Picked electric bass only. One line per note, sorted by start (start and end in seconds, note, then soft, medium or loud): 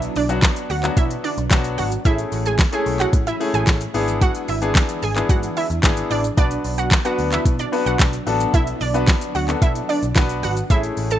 0.16 0.43 B1 loud
0.70 0.88 D2 medium
0.97 1.15 B2 loud
1.38 1.47 B1 medium
1.78 1.96 G#1 medium
2.05 2.23 A1 loud
2.32 2.59 A1 loud
2.86 3.04 B1 loud
3.13 3.31 A2 loud
3.54 3.63 A1 medium
3.67 3.85 A1 loud
3.94 4.30 G#1 loud
4.49 4.76 G#1 loud
5.03 5.21 G#1 medium
5.29 5.47 G#2 loud
5.70 5.79 E2 medium
5.83 6.02 G#1 loud
6.11 6.29 A1 loud
6.38 6.56 B1 loud
6.65 6.92 B1 loud
7.19 7.37 D2 medium
7.45 7.64 B2 loud
7.86 7.95 B1 medium
8.27 8.45 A1 loud
8.54 8.72 B1 loud
8.81 9.08 B1 medium
9.35 9.53 D2 loud
9.62 9.80 B2 loud
10.03 10.12 B1 medium
10.43 10.61 G#1 medium
10.70 10.88 A1 loud
10.97 11.19 A1 loud